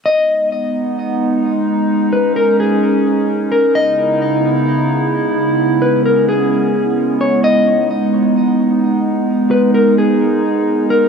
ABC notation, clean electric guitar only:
X:1
M:4/4
L:1/8
Q:1/4=130
K:B
V:1 name="Clean electric guitar"
d2 z6 | z B A G4 A | d2 z6 | z B A G4 c |
d2 z6 | z B A G4 A |]